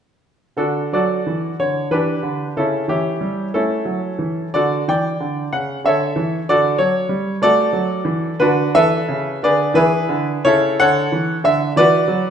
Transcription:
0.57 0.85 D3 soft
0.57 0.91 D4 medium
0.57 0.91 F#4 medium
0.57 0.93 A4 medium
0.93 1.20 F#3 soft
0.93 1.56 F#4 medium
0.93 1.56 A4 medium
0.93 1.50 D5 medium
1.26 1.53 E3 soft
1.60 1.85 D3 soft
1.60 1.87 C#5 medium
1.91 2.17 E3 soft
1.91 2.53 D4 medium
1.91 2.53 G4 medium
1.91 2.47 B4 medium
2.23 2.49 D3 soft
2.57 2.83 C#3 soft
2.57 2.88 C#4 soft
2.57 2.88 E4 medium
2.57 2.85 A4 medium
2.88 3.14 E3 soft
2.88 3.50 C#4 soft
2.88 3.50 E4 medium
2.88 3.44 G4 medium
3.21 3.47 G3 soft
3.54 3.80 A3 soft
3.54 4.51 C#4 medium
3.54 4.51 E4 medium
3.54 4.54 A4 medium
3.85 4.12 F#3 soft
4.19 4.47 E3 soft
4.54 4.81 D3 soft
4.54 4.87 F#4 medium
4.54 4.87 A4 medium
4.54 4.83 D5 medium
4.88 5.14 E3 soft
4.88 5.49 D5 medium
4.88 5.43 G5 medium
5.20 5.46 D3 soft
5.53 5.78 C#3 soft
5.53 5.79 F#5 medium
5.84 6.09 D3 soft
5.84 6.44 A4 medium
5.84 6.44 C#5 medium
5.84 6.38 E5 medium
6.16 6.41 E3 medium
6.49 6.73 D3 medium
6.49 6.78 F#4 medium
6.49 6.77 A4 medium
6.49 6.79 D5 medium
6.78 7.03 F#3 medium
6.78 7.40 C#5 medium
7.09 7.34 G3 medium
7.42 7.66 A3 medium
7.42 8.37 F#4 medium
7.42 8.37 A4 medium
7.42 8.41 D5 medium
7.73 7.99 F#3 medium
8.05 8.33 E3 medium
8.39 8.68 D3 medium
8.39 8.73 D4 medium
8.39 8.73 F#4 medium
8.39 8.70 B4 medium
8.75 9.02 E3 medium
8.75 9.38 A4 medium
8.75 9.38 B4 medium
8.75 9.41 E5 loud
9.08 9.35 C#3 medium
9.43 9.69 D3 medium
9.43 9.73 G#4 medium
9.43 9.73 B4 medium
9.43 9.75 D5 medium
9.74 10.01 E3 medium
9.74 10.40 E4 medium
9.74 10.39 G#4 medium
9.74 10.43 B4 medium
10.09 10.36 D3 medium
10.45 10.72 C#3 medium
10.45 10.76 E4 medium
10.45 10.77 A4 medium
10.45 10.78 C#5 loud
10.80 11.06 D3 medium
10.80 11.41 A4 medium
10.80 11.41 C#5 medium
10.80 11.35 F#5 loud
11.12 11.38 E3 medium
11.44 11.70 D3 medium
11.44 11.72 E5 medium
11.76 12.02 E3 medium
11.76 12.30 F#4 medium
11.76 12.30 B4 medium
11.76 12.30 D5 loud
12.08 12.30 F#3 medium

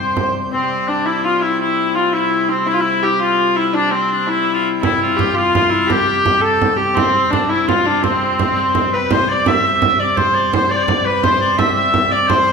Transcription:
0.00 0.50 C3 medium
0.00 0.50 G3 medium
0.00 0.30 C5 medium
0.00 0.34 C5 medium
0.17 frame drum medium
0.52 4.82 C3 medium
0.52 4.81 G3 medium
0.52 0.89 C4 medium
0.52 0.88 C4 medium
0.88 1.08 D4 medium
0.88 1.06 D4 medium
1.06 1.24 E4 medium
1.06 1.23 E4 medium
1.23 1.43 F4 medium
1.23 1.42 F4 medium
1.42 1.60 E4 medium
1.60 1.94 E4 medium
1.60 1.95 E4 medium
1.95 2.12 F4 medium
1.95 2.13 F4 medium
2.13 2.50 E4 medium
2.13 2.48 E4 medium
2.49 2.67 C4 medium
2.49 2.66 C4 medium
2.67 2.74 E4 loud
2.67 2.81 E4 medium
2.73 2.81 F4 medium
2.80 3.03 E4 medium
2.80 3.06 E4 medium
3.03 3.20 G4 medium
3.03 3.22 G4 medium
3.19 3.56 F4 loud
3.19 3.55 F4 medium
3.56 3.74 E4 medium
3.56 3.67 E4 medium
3.74 3.91 D4 medium
3.74 3.95 D4 medium
3.91 4.28 C4 medium
3.91 4.11 C4 medium
4.12 4.28 D4 medium
4.27 4.66 E4 medium
4.27 4.51 E4 medium
4.53 4.69 F4 medium
4.81 9.09 C3 medium
4.81 9.09 G3 medium
4.81 5.17 E4 medium
4.81 5.00 E4 loud
4.81 frame drum medium
5.02 5.35 F4 medium
5.17 5.35 G4 medium
5.17 frame drum medium
5.35 5.72 F4 medium
5.35 5.53 F4 medium
5.55 5.93 F4 medium
5.55 frame drum medium
5.70 5.89 E4 medium
5.70 frame drum soft
5.87 6.42 G4 loud
5.87 frame drum medium
5.92 6.44 G4 loud
6.08 frame drum soft
6.26 frame drum medium
6.41 6.78 A4 loud
6.41 6.77 A4 medium
6.62 frame drum medium
6.77 6.96 G4 loud
6.77 frame drum soft
6.95 7.32 C4 loud
6.95 7.30 C4 loud
6.95 frame drum medium
7.15 frame drum soft
7.30 7.49 D4 medium
7.30 7.41 D4 medium
7.30 frame drum medium
7.49 7.68 E4 loud
7.49 7.67 E4 medium
7.68 7.86 F4 medium
7.68 8.04 F4 medium
7.68 frame drum medium
7.86 8.03 D4 medium
7.86 frame drum soft
8.03 8.91 C4 medium
8.03 8.94 C4 medium
8.03 frame drum medium
8.39 frame drum medium
8.57 frame drum soft
8.75 frame drum medium
8.92 9.13 B4 medium
8.92 9.12 B4 medium
9.11 12.53 C3 medium
9.11 12.53 G3 medium
9.11 9.30 C5 medium
9.11 9.32 C5 loud
9.11 frame drum loud
9.29 9.46 D5 medium
9.29 9.48 D5 medium
9.29 frame drum soft
9.46 9.63 E5 medium
9.46 9.65 E5 medium
9.46 frame drum loud
9.63 9.96 E5 medium
9.63 10.00 E5 medium
9.82 frame drum medium
9.99 10.19 D5 medium
9.99 10.17 D5 medium
10.17 10.53 C5 medium
10.17 10.37 C5 medium
10.17 frame drum medium
10.35 10.53 D5 medium
10.35 frame drum soft
10.53 10.71 C5 medium
10.53 10.72 C5 medium
10.53 frame drum medium
10.70 10.78 D5 medium
10.70 11.06 D5 medium
10.77 10.85 C5 medium
10.84 11.06 D5 medium
10.88 frame drum medium
11.05 11.22 B4 medium
11.05 11.24 B4 medium
11.23 11.40 C5 loud
11.23 11.59 C5 loud
11.23 frame drum medium
11.40 11.57 D5 medium
11.40 frame drum soft
11.58 11.75 E5 medium
11.58 11.78 E5 medium
11.58 frame drum medium
11.75 12.08 E5 loud
11.75 12.12 E5 medium
11.94 frame drum medium
12.11 12.29 D5 medium
12.28 12.53 C5 loud
12.28 frame drum medium

